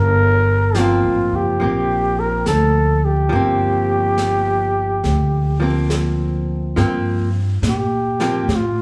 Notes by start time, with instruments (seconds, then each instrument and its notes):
Already playing: upright bass G1, muted trumpet A#4
0.75 hollow-body jazz guitar F3 A#3, snare, hi-hat pedal
0.79 hollow-body jazz guitar C4, muted trumpet F4
1.03 upright bass A1
1.32 upright bass F#1, muted trumpet G4
1.60 upright bass A#1, hollow-body jazz guitar F3 A#3 C4, brush sweep
2.20 muted trumpet A#4
2.46 upright bass D2, muted trumpet A4, snare, hi-hat pedal
3.05 muted trumpet G4
3.29 upright bass G1, hollow-body jazz guitar F3 A#3, brush sweep
3.36 hollow-body jazz guitar C4
4.18 snare, hi-hat pedal
5.03 upright bass D2, brush sweep, snare
5.60 hollow-body jazz guitar F3 A#3 C4
5.90 snare, hi-hat pedal
6.76 upright bass G2, hollow-body jazz guitar F3 A#3 C4, brush sweep, snare
7.62 upright bass A#2, snare, hi-hat pedal
7.69 muted trumpet G4
8.20 hollow-body jazz guitar F3 A#3 C4, snare
8.48 upright bass A2, brush sweep, snare
8.56 muted trumpet F4